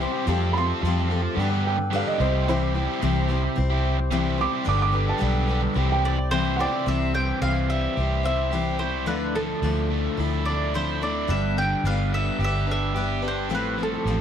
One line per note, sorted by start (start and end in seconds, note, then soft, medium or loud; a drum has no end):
0.00 0.24 C3 loud
0.00 0.25 G3 medium
0.00 0.26 G3 medium
0.00 0.15 C4 medium
0.00 0.26 C4 medium
0.00 0.26 E4 medium
0.00 0.13 E4 medium
0.00 0.28 E4 medium
0.00 0.26 G4 medium
0.00 0.12 G4 loud
0.00 0.28 C5 medium
0.13 0.26 C4 medium
0.13 0.26 E4 medium
0.13 0.28 G4 medium
0.25 0.71 F2 loud
0.25 0.52 F3 loud
0.25 0.54 F3 loud
0.25 0.55 G3 loud
0.25 1.36 A3 medium
0.25 0.53 C4 loud
0.25 0.55 C4 medium
0.25 0.54 F4 loud
0.25 1.36 F4 medium
0.25 1.33 G4 medium
0.25 0.55 G4 loud
0.25 0.55 A4 loud
0.53 0.79 F3 medium
0.53 0.68 C4 medium
0.53 0.67 F4 medium
0.53 0.65 A4 medium
0.53 0.83 A4 medium
0.53 0.56 B5 medium
0.58 0.84 C4 medium
0.58 0.84 G4 medium
0.58 1.36 C6 loud
0.67 0.80 C4 medium
0.67 0.81 F4 medium
0.67 0.82 A4 medium
0.80 1.27 F2 medium
0.80 1.07 F3 medium
0.80 1.08 C4 medium
0.80 1.09 F4 medium
0.80 1.10 A4 loud
0.85 1.11 F3 medium
0.85 1.11 G3 medium
0.85 1.11 C4 medium
0.85 1.11 G4 medium
0.85 1.09 A4 medium
1.08 1.35 F3 medium
1.08 1.22 C4 medium
1.08 1.21 F4 medium
1.08 1.38 A4 medium
1.08 1.21 A4 medium
1.12 1.39 C4 soft
1.12 1.38 G4 medium
1.22 muted overdriven electric guitar stroke soft
1.34 1.77 G2 medium
1.34 2.03 G2 medium
1.34 1.78 D3 medium
1.34 1.53 G3 medium
1.34 2.18 B3 medium
1.34 1.51 B3 medium
1.34 1.50 D4 medium
1.34 2.17 G4 medium
1.34 2.17 A4 medium
1.39 1.92 G3 medium
1.39 1.92 D4 medium
1.39 1.50 G4 medium
1.39 1.93 A4 medium
1.39 1.93 B4 medium
1.50 1.78 G3 medium
1.50 1.77 B3 medium
1.50 1.77 D4 medium
1.50 1.78 G4 medium
1.67 1.93 G5 medium
1.78 muted overdriven electric guitar stroke medium
1.91 2.17 G2 loud
1.91 2.18 D3 loud
1.91 2.20 G3 medium
1.91 2.19 G3 loud
1.91 2.19 B3 loud
1.91 2.20 D4 medium
1.91 2.19 D4 loud
1.91 2.21 G4 loud
1.91 2.20 A4 medium
1.91 2.20 B4 loud
1.96 2.07 F5 medium
2.07 2.47 D#5 medium
2.18 2.86 C2 loud
2.18 2.45 C3 loud
2.18 2.46 G3 loud
2.18 2.48 G3 medium
2.18 2.34 C4 loud
2.18 2.48 C4 medium
2.18 4.64 E4 medium
2.18 2.48 E4 medium
2.18 2.33 E4 loud
2.18 4.64 G4 medium
2.18 2.32 G4 loud
2.18 4.64 C5 medium
2.18 2.47 C5 medium
2.32 2.47 C4 medium
2.32 2.48 E4 medium
2.32 2.49 G4 medium
2.46 3.00 C3 medium
2.46 2.75 C3 medium
2.46 2.75 E3 medium
2.46 2.73 G3 loud
2.46 2.75 G3 medium
2.46 2.73 C4 loud
2.46 2.74 C4 medium
2.46 4.09 E4 medium
2.46 2.74 E4 loud
2.46 2.76 G4 loud
2.46 4.09 C5 loud
2.51 2.73 C5 medium
2.74 3.02 G3 medium
2.74 3.01 G3 medium
2.74 2.90 C4 medium
2.74 3.01 C4 medium
2.74 3.02 E4 soft
2.74 2.88 E4 medium
2.74 2.87 G4 medium
2.74 3.02 C5 medium
2.87 3.02 C4 medium
2.87 3.02 E4 medium
2.87 3.04 G4 medium
3.01 3.47 C2 medium
3.01 3.56 C3 loud
3.01 3.29 C3 medium
3.01 3.30 E3 medium
3.01 3.29 G3 medium
3.01 3.30 G3 medium
3.01 3.29 C4 loud
3.01 3.29 C4 medium
3.01 3.28 E4 medium
3.01 3.30 E4 medium
3.01 3.32 G4 loud
3.01 3.27 C5 loud
3.28 3.44 G3 medium
3.28 3.54 G3 medium
3.28 3.55 C4 medium
3.28 3.43 C4 medium
3.28 3.56 E4 medium
3.28 3.42 E4 medium
3.28 3.56 C5 medium
3.33 3.43 G4 medium
3.43 muted overdriven electric guitar stroke medium
3.55 4.46 C2 medium
3.55 4.12 G3 medium
3.55 4.11 C4 medium
3.55 4.11 E4 medium
3.55 4.12 C5 medium
3.70 3.97 C4 medium
3.70 3.97 E4 medium
3.70 3.98 G4 medium
3.98 muted overdriven electric guitar stroke medium
4.11 4.65 C3 loud
4.11 4.39 C3 loud
4.11 4.40 E3 medium
4.11 4.37 G3 medium
4.11 4.40 G3 loud
4.11 4.39 C4 loud
4.11 4.38 C4 medium
4.11 4.37 E4 loud
4.11 4.39 E4 loud
4.11 4.40 G4 loud
4.11 4.36 C5 loud
4.38 4.67 G3 medium
4.38 4.63 G3 soft
4.38 4.55 C4 medium
4.38 4.65 C4 medium
4.38 4.65 E4 medium
4.38 4.53 E4 medium
4.38 4.53 G4 loud
4.38 4.65 C5 medium
4.38 4.67 D6 loud
4.53 4.67 C4 medium
4.53 4.66 E4 medium
4.53 4.69 G4 medium
4.64 5.12 G1 loud
4.64 5.19 G2 loud
4.64 5.20 D3 loud
4.64 4.93 G3 medium
4.64 4.92 G3 medium
4.64 4.93 B3 loud
4.64 4.92 D4 medium
4.64 5.77 G4 medium
4.64 4.92 A4 medium
4.64 5.77 A4 medium
4.64 4.91 B4 loud
4.69 4.94 D4 loud
4.69 4.95 G4 loud
4.69 5.77 B4 medium
4.69 4.81 D6 medium
4.82 5.08 D6 loud
4.92 5.09 G3 medium
4.92 5.08 B3 medium
4.92 5.18 D4 soft
4.92 5.07 D4 medium
4.92 5.19 A4 medium
4.92 5.20 B4 medium
4.96 5.06 G4 medium
5.07 5.20 G3 medium
5.07 5.21 B3 medium
5.07 5.21 D4 medium
5.07 5.22 G4 medium
5.07 5.89 A5 medium
5.18 5.66 B1 medium
5.18 5.74 G2 loud
5.18 5.75 D3 medium
5.18 5.48 G3 medium
5.18 5.47 G3 medium
5.18 5.48 B3 medium
5.18 5.48 D4 medium
5.18 5.48 A4 medium
5.18 5.46 B4 loud
5.22 5.49 D4 medium
5.22 5.49 G4 loud
5.47 5.63 G3 medium
5.47 5.62 B3 medium
5.47 5.75 D4 soft
5.47 5.62 D4 medium
5.47 5.62 G4 medium
5.47 5.76 A4 medium
5.47 5.76 B4 medium
5.63 muted overdriven electric guitar stroke medium
5.74 6.65 C2 medium
5.74 6.18 C3 medium
5.74 6.18 E3 medium
5.74 6.31 G3 medium
5.74 5.92 G3 medium
5.74 6.30 C4 medium
5.74 6.30 E4 medium
5.74 5.90 E4 medium
5.74 6.32 C5 medium
5.74 6.79 C5 medium
5.78 6.65 E4 medium
5.78 5.89 G4 medium
5.78 6.71 G4 medium
5.90 6.18 G3 medium
5.90 6.17 E4 medium
5.90 6.18 G4 medium
5.90 6.58 G5 loud
6.05 6.31 D5 medium
6.19 muted overdriven electric guitar stroke medium
6.31 6.59 C3 medium
6.31 6.86 C3 loud
6.31 6.59 E3 medium
6.31 6.57 E3 medium
6.31 6.60 G3 medium
6.31 6.59 G3 loud
6.31 6.59 C4 medium
6.31 6.58 E4 loud
6.31 6.60 E4 loud
6.31 6.61 G4 loud
6.31 6.60 C5 medium
6.31 6.58 C5 loud
6.54 6.85 E3 medium
6.54 6.78 A3 medium
6.54 6.79 B3 medium
6.54 6.60 F#5 medium
6.59 6.74 G3 medium
6.59 6.87 G3 soft
6.59 6.87 C4 medium
6.59 6.81 C4 medium
6.59 6.86 E4 soft
6.59 6.73 E4 medium
6.59 6.71 G4 medium
6.59 6.87 C5 medium
6.59 6.86 D5 medium
6.59 6.87 G5 loud
6.64 6.82 D4 medium
6.64 6.84 E4 medium
6.69 6.85 F4 medium
6.69 6.85 G4 medium
6.74 6.87 G3 medium
6.74 6.86 E4 medium
6.74 6.88 A4 medium
6.74 6.89 B4 medium
6.80 6.86 C5 medium
6.80 6.92 D5 medium
6.86 7.32 C2 loud
6.86 7.14 C3 medium
6.86 8.26 C3 medium
6.86 7.15 E3 medium
6.86 7.15 G3 medium
6.86 7.15 C4 medium
6.86 9.06 E4 medium
6.86 7.13 E4 loud
6.86 9.06 G4 medium
6.86 9.06 C5 medium
6.86 7.13 C5 medium
6.86 7.14 E5 medium
7.14 7.40 E3 medium
7.14 7.42 G3 soft
7.14 7.41 C4 soft
7.14 7.42 E4 medium
7.14 7.42 C5 medium
7.14 7.41 G5 medium
7.41 7.87 C2 medium
7.41 7.98 C3 medium
7.41 8.80 E3 medium
7.41 8.53 E3 medium
7.41 7.96 G3 medium
7.41 7.97 C4 medium
7.41 7.99 E4 medium
7.41 7.99 C5 medium
7.41 7.71 F5 medium
7.70 9.08 G3 medium
7.70 8.24 E5 medium
7.96 9.08 C2 medium
7.96 8.25 G3 medium
7.96 8.24 C4 medium
7.96 8.24 E4 medium
7.96 8.50 G4 medium
7.96 8.22 C5 medium
8.23 8.51 G3 soft
8.23 8.51 C4 soft
8.23 8.52 E4 soft
8.23 8.79 E4 medium
8.23 8.52 C5 medium
8.23 8.79 E5 medium
8.52 8.80 C3 medium
8.52 8.81 E3 medium
8.52 8.80 G3 medium
8.52 8.79 C4 medium
8.52 8.78 E4 medium
8.52 9.08 G4 medium
8.52 8.77 C5 loud
8.79 9.06 G3 soft
8.79 9.06 C4 soft
8.79 9.06 E4 soft
8.79 9.08 E4 medium
8.79 9.07 C5 medium
9.06 9.53 D2 loud
9.06 9.35 D3 medium
9.06 10.46 D3 medium
9.06 9.35 F3 medium
9.06 9.35 A3 medium
9.06 9.35 D4 medium
9.06 11.27 E4 medium
9.06 9.34 E4 medium
9.06 9.34 A4 medium
9.06 9.37 B4 medium
9.06 11.27 D5 medium
9.35 9.61 F3 medium
9.35 9.62 A3 soft
9.35 9.63 D4 soft
9.35 9.63 E4 soft
9.35 9.63 A4 medium
9.35 9.87 A4 medium
9.62 10.07 D2 medium
9.62 10.19 D3 medium
9.62 11.02 F3 medium
9.62 10.19 F3 medium
9.62 10.16 A3 medium
9.62 10.19 D4 medium
9.62 10.18 E4 loud
9.62 10.19 A4 medium
9.90 11.30 A3 medium
10.17 11.30 D2 medium
10.17 10.46 A3 medium
10.17 10.47 D4 medium
10.17 10.73 E4 medium
10.17 10.47 E4 medium
10.17 10.47 A4 medium
10.45 11.00 D4 medium
10.45 10.74 E4 medium
10.45 10.75 A4 medium
10.45 10.72 D5 medium
10.50 10.73 A3 soft
10.50 10.75 D4 soft
10.74 11.02 D3 medium
10.74 11.02 F3 medium
10.74 11.02 A3 medium
10.74 11.02 D4 medium
10.74 11.30 E4 medium
10.74 11.02 E4 medium
10.74 11.00 A4 medium
10.74 11.01 C5 medium
11.02 11.28 A3 medium
11.02 11.30 D4 medium
11.02 11.28 D4 soft
11.02 11.29 E4 medium
11.02 11.29 A4 medium
11.02 11.31 D5 medium
11.27 11.74 G1 loud
11.27 12.68 G2 medium
11.27 11.56 G3 medium
11.27 11.57 B3 medium
11.27 13.48 D4 medium
11.27 11.57 D4 medium
11.27 13.48 G4 medium
11.27 11.57 G4 medium
11.27 13.48 B4 medium
11.27 11.56 B4 medium
11.27 11.58 E5 medium
11.57 12.96 D3 medium
11.57 11.84 D4 soft
11.57 11.85 G4 soft
11.57 11.85 B4 medium
11.57 11.86 G5 loud
11.84 12.29 G1 loud
11.84 13.53 G3 medium
11.84 12.95 G3 medium
11.84 12.39 B3 medium
11.84 12.39 D4 medium
11.84 12.42 G4 medium
11.84 12.41 B4 medium
11.84 12.14 F5 loud
12.13 13.51 B3 medium
12.13 12.39 E5 medium
12.39 13.50 G1 medium
12.39 12.68 B3 medium
12.39 12.68 D4 medium
12.39 12.94 G4 medium
12.39 12.67 G4 medium
12.43 12.66 B4 medium
12.43 12.70 E5 medium
12.67 13.22 D4 medium
12.67 12.94 D4 soft
12.67 12.95 G4 soft
12.67 12.95 B4 medium
12.71 13.21 E5 medium
12.95 13.23 G3 medium
12.95 13.24 B3 medium
12.95 13.23 D4 medium
12.95 13.53 G4 medium
12.95 13.22 G4 medium
12.95 13.21 B4 medium
13.22 13.51 D4 medium
13.22 13.50 D4 soft
13.22 13.50 G4 soft
13.22 13.50 B4 medium
13.28 13.54 C5 medium
13.49 13.95 A1 medium
13.49 13.78 A2 medium
13.49 14.21 A2 medium
13.49 13.78 F3 medium
13.49 13.79 G3 medium
13.49 13.79 C4 medium
13.49 14.21 F4 medium
13.49 14.21 G4 medium
13.49 13.77 G4 medium
13.49 14.21 A4 medium
13.49 13.77 A4 medium
13.55 13.81 B4 medium
13.78 14.04 F3 medium
13.78 14.06 G3 soft
13.78 14.07 C4 soft
13.78 14.06 G4 soft
13.78 14.06 A4 soft
13.83 14.21 A4 medium
14.05 14.21 A1 medium
14.05 14.21 A2 medium
14.05 14.21 F3 medium
14.05 14.21 G3 medium
14.05 14.21 C4 medium
14.05 14.21 G4 medium
14.05 14.21 A4 medium